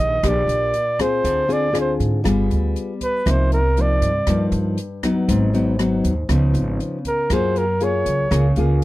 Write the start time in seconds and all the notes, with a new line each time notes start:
Already playing: A#1 D#3 A#3 G4 D#5
0.23 A#1 A#2 A#3 D4 G4, kick, cross-stick, closed hi-hat
0.28 D5
0.47 A#1, closed hi-hat
0.74 closed hi-hat
0.99 C4 F4 G#4 C5, kick, cross-stick, closed hi-hat
1.24 D2 D3, kick, closed hi-hat
1.48 C4 F4 G#4, closed hi-hat
1.53 D5
1.73 C4 F4 G#4, cross-stick, closed hi-hat
1.81 C5
2.00 G#2, kick, closed hi-hat
2.24 G1 G3 B3 F4 G#4, kick, cross-stick, closed hi-hat
2.51 D2, closed hi-hat
2.76 closed hi-hat
3.01 B4, kick, closed hi-hat
3.26 C2 C3 F3 A#3 D#4, kick, cross-stick, closed hi-hat
3.31 C5
3.52 A#4, closed hi-hat
3.77 F3 A#3 D#4, closed hi-hat
3.81 D5
4.01 G2, kick, closed hi-hat
4.27 G2 F3 A#3 D#4, kick, cross-stick, closed hi-hat
4.52 G2, closed hi-hat
4.78 closed hi-hat
5.03 F#3 B3 D#4, kick, cross-stick, closed hi-hat
5.28 G#1 G#2, kick, closed hi-hat
5.53 F#3 B3 D#4, closed hi-hat
5.79 F#3 B3 D#4, cross-stick, closed hi-hat
6.04 D#2, kick, closed hi-hat
6.29 C#2 C#3 F3 B3 D#4, kick, cross-stick, closed hi-hat
6.54 G#1, closed hi-hat
6.80 closed hi-hat
7.05 A#4, kick, closed hi-hat
7.30 F#2 F#3 A#3 F4 G#4 C5, kick, cross-stick, closed hi-hat
7.56 A#4, closed hi-hat
7.80 A#3 F4 G#4 C#5, closed hi-hat
8.06 C#2, kick, closed hi-hat
8.31 C#2 C#3 A#3 F4 G#4, kick, cross-stick, closed hi-hat
8.56 C#2 A#3 F4 G#4, closed hi-hat